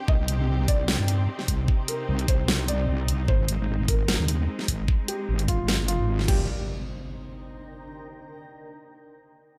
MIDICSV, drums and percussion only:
0, 0, Header, 1, 2, 480
1, 0, Start_track
1, 0, Tempo, 400000
1, 100, Time_signature, 4, 2, 24, 8
1, 11497, End_track
2, 0, Start_track
2, 0, Title_t, "Drums"
2, 99, Note_on_c, 9, 36, 116
2, 219, Note_off_c, 9, 36, 0
2, 339, Note_on_c, 9, 42, 73
2, 459, Note_off_c, 9, 42, 0
2, 819, Note_on_c, 9, 36, 107
2, 819, Note_on_c, 9, 42, 76
2, 939, Note_off_c, 9, 36, 0
2, 939, Note_off_c, 9, 42, 0
2, 1058, Note_on_c, 9, 38, 116
2, 1178, Note_off_c, 9, 38, 0
2, 1298, Note_on_c, 9, 42, 71
2, 1418, Note_off_c, 9, 42, 0
2, 1666, Note_on_c, 9, 38, 35
2, 1779, Note_on_c, 9, 36, 56
2, 1779, Note_on_c, 9, 42, 76
2, 1786, Note_off_c, 9, 38, 0
2, 1899, Note_off_c, 9, 36, 0
2, 1899, Note_off_c, 9, 42, 0
2, 2019, Note_on_c, 9, 36, 116
2, 2139, Note_off_c, 9, 36, 0
2, 2259, Note_on_c, 9, 42, 72
2, 2379, Note_off_c, 9, 42, 0
2, 2627, Note_on_c, 9, 42, 34
2, 2740, Note_off_c, 9, 42, 0
2, 2740, Note_on_c, 9, 36, 100
2, 2740, Note_on_c, 9, 42, 74
2, 2860, Note_off_c, 9, 36, 0
2, 2860, Note_off_c, 9, 42, 0
2, 2980, Note_on_c, 9, 38, 113
2, 3100, Note_off_c, 9, 38, 0
2, 3221, Note_on_c, 9, 42, 75
2, 3341, Note_off_c, 9, 42, 0
2, 3701, Note_on_c, 9, 42, 72
2, 3821, Note_off_c, 9, 42, 0
2, 3940, Note_on_c, 9, 36, 109
2, 4060, Note_off_c, 9, 36, 0
2, 4182, Note_on_c, 9, 42, 77
2, 4302, Note_off_c, 9, 42, 0
2, 4660, Note_on_c, 9, 36, 100
2, 4661, Note_on_c, 9, 42, 79
2, 4780, Note_off_c, 9, 36, 0
2, 4781, Note_off_c, 9, 42, 0
2, 4901, Note_on_c, 9, 38, 109
2, 5021, Note_off_c, 9, 38, 0
2, 5141, Note_on_c, 9, 42, 76
2, 5261, Note_off_c, 9, 42, 0
2, 5508, Note_on_c, 9, 38, 34
2, 5620, Note_on_c, 9, 36, 57
2, 5620, Note_on_c, 9, 42, 78
2, 5628, Note_off_c, 9, 38, 0
2, 5740, Note_off_c, 9, 36, 0
2, 5740, Note_off_c, 9, 42, 0
2, 5860, Note_on_c, 9, 36, 112
2, 5980, Note_off_c, 9, 36, 0
2, 6101, Note_on_c, 9, 42, 77
2, 6221, Note_off_c, 9, 42, 0
2, 6468, Note_on_c, 9, 42, 37
2, 6580, Note_on_c, 9, 36, 99
2, 6581, Note_off_c, 9, 42, 0
2, 6581, Note_on_c, 9, 42, 80
2, 6700, Note_off_c, 9, 36, 0
2, 6701, Note_off_c, 9, 42, 0
2, 6821, Note_on_c, 9, 38, 113
2, 6941, Note_off_c, 9, 38, 0
2, 7061, Note_on_c, 9, 42, 79
2, 7181, Note_off_c, 9, 42, 0
2, 7429, Note_on_c, 9, 38, 34
2, 7540, Note_on_c, 9, 36, 111
2, 7541, Note_on_c, 9, 49, 86
2, 7549, Note_off_c, 9, 38, 0
2, 7660, Note_off_c, 9, 36, 0
2, 7661, Note_off_c, 9, 49, 0
2, 11497, End_track
0, 0, End_of_file